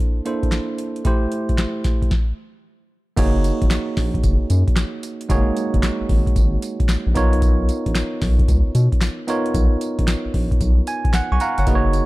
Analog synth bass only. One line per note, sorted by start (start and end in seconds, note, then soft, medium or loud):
3.17 3.51 F#1 loud
3.62 3.69 G#1 medium
3.97 4.18 A#1 medium
4.24 4.37 F#1 loud
4.50 4.64 F#2 loud
5.30 5.43 F#1 loud
5.74 5.81 F#1 medium
6.01 6.04 G#1 soft
6.09 6.23 G#1 medium
6.36 6.56 G#1 loud
6.89 6.96 A#1 soft
7.07 7.14 A#1 medium
7.16 7.70 B1 loud
7.86 7.93 A#1 loud
8.22 8.42 B1 medium
8.48 8.62 C#2 loud
8.75 8.88 B2 medium
9.54 9.68 B1 loud
9.99 10.06 A#1 medium
10.25 10.29 A#1 soft
10.34 10.48 A#1 medium
10.61 10.81 B1 loud
11.14 11.21 B1 medium
11.32 11.38 B1 medium
11.58 11.65 G1 medium
11.67 12.01 F#1 loud